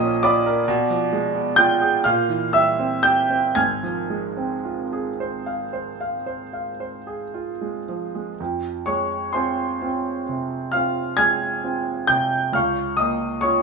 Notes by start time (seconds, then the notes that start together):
Already playing: A#1 A#2 F3 A#3 D#5 D#6
0.03 C#4
0.23 F4 D5 B5 D6
0.46 A#4
0.68 B2
0.90 F3
1.13 G#3
1.35 B3
1.56 F4 G5 G6
1.81 G#4
2.04 A#2 F5 F6
2.29 E3
2.53 G3 E5 E6
2.79 C4
3.03 G4 G5 G6
3.30 C4
3.55 G#1 G#2 G#5 F6 G#6
3.83 F3
4.10 G#3
4.37 C4
4.65 F4
4.93 G#4
5.20 C5
5.46 F5
5.73 C5
6.01 F5
6.26 C5
6.53 F5
6.80 C5
7.07 G#4
7.34 F4
7.61 G#3
7.89 F3
8.15 G#3
8.40 F2
8.86 G#3 C#5 C#6
9.33 C4 F4 C5 G#5 C6
9.82 C4 F4
10.29 C3
10.72 C4 F4 F5 F6
11.17 G#3 G#5 F6 G#6
11.64 C4 F4
12.07 C3 G5 G6
12.52 C#2 F5 C#6 F6
12.97 A#3 D#5 D#6
13.41 C#4 F4 C#5 C#6